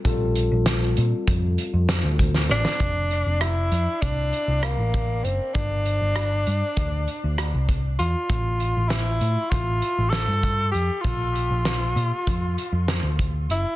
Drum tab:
HH |x-x-x-x-x-x-x-x---|x-x-x-x-x-x-x-x-x-|x-x-x-x-x-x-x-x-x-|x-x-x-x-x-x-x-x-x-|
SD |----o-------o--ooo|----r-------r-----|----r-------r-----|----o-------o-----|
BD |o-------o-----o---|o-------o-----o---|o-------o-----o---|o-------o-----o---|

HH |x-x-x-x-x-x-x-x-x-|
SD |----o-------o-----|
BD |o-------o-----o---|